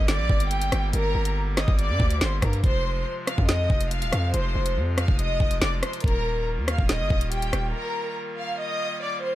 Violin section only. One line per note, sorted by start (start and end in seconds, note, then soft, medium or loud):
0.08 0.48 D5 medium
0.08 0.49 D6 medium
0.51 0.91 G4 medium
0.51 0.91 G5 medium
0.94 1.34 A#4 loud
0.94 1.34 A#5 medium
1.57 1.75 D#5 medium
1.57 1.75 D#6 medium
1.79 2.19 D5 loud
1.79 2.19 D6 medium
2.21 2.38 C5 medium
2.21 2.39 C6 medium
2.42 2.60 A#4 medium
2.42 2.60 A#5 medium
2.64 3.04 C5 loud
2.64 3.04 C6 medium
3.27 3.45 F5 medium
3.27 3.45 F6 medium
3.49 3.89 D#5 medium
3.49 3.89 D#6 medium
3.91 4.31 F5 medium
3.91 4.32 F6 medium
4.34 4.74 C5 loud
4.34 4.74 C6 medium
4.98 5.15 F5 medium
4.98 5.16 F6 medium
5.19 5.59 D#5 loud
5.19 5.59 D#6 medium
5.61 5.79 D5 medium
5.61 5.79 D6 medium
5.83 6.00 C5 medium
5.83 6.01 C6 medium
6.04 6.44 A#4 loud
6.04 6.44 A#5 medium
6.68 6.85 F5 medium
6.68 6.86 F6 medium
6.89 7.29 D#5 medium
6.89 7.30 D#6 medium
7.32 7.72 G4 medium
7.32 7.72 G5 medium
7.74 8.14 A#4 loud
7.74 8.15 A#5 medium
8.38 8.55 F5 medium
8.38 8.56 F6 medium
8.59 8.99 D#5 medium
8.59 9.00 D#6 medium
9.02 9.19 D5 medium
9.02 9.20 D6 medium
9.23 9.35 C5 medium
9.23 9.35 C6 medium